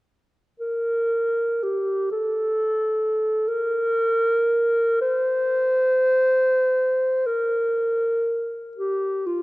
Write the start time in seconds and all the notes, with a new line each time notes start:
0.60 A#4
1.63 G4
2.11 A4
3.48 A#4
5.01 C5
7.26 A#4
8.77 G4
9.26 F4